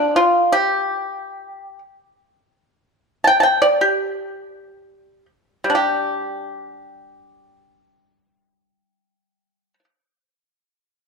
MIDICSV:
0, 0, Header, 1, 2, 480
1, 0, Start_track
1, 0, Tempo, 500000
1, 10632, End_track
2, 0, Start_track
2, 0, Title_t, "Pipa"
2, 0, Program_c, 0, 105
2, 0, Note_on_c, 0, 62, 52
2, 145, Note_off_c, 0, 62, 0
2, 154, Note_on_c, 0, 65, 59
2, 501, Note_off_c, 0, 65, 0
2, 504, Note_on_c, 0, 67, 49
2, 1712, Note_off_c, 0, 67, 0
2, 3112, Note_on_c, 0, 81, 48
2, 3138, Note_off_c, 0, 81, 0
2, 3142, Note_on_c, 0, 79, 67
2, 3252, Note_off_c, 0, 79, 0
2, 3265, Note_on_c, 0, 81, 45
2, 3292, Note_off_c, 0, 81, 0
2, 3295, Note_on_c, 0, 79, 58
2, 3453, Note_off_c, 0, 79, 0
2, 3472, Note_on_c, 0, 74, 55
2, 3655, Note_off_c, 0, 74, 0
2, 3659, Note_on_c, 0, 67, 45
2, 5044, Note_off_c, 0, 67, 0
2, 5417, Note_on_c, 0, 55, 32
2, 5469, Note_on_c, 0, 62, 33
2, 5518, Note_on_c, 0, 67, 34
2, 9346, Note_off_c, 0, 55, 0
2, 9399, Note_off_c, 0, 62, 0
2, 9448, Note_off_c, 0, 67, 0
2, 10632, End_track
0, 0, End_of_file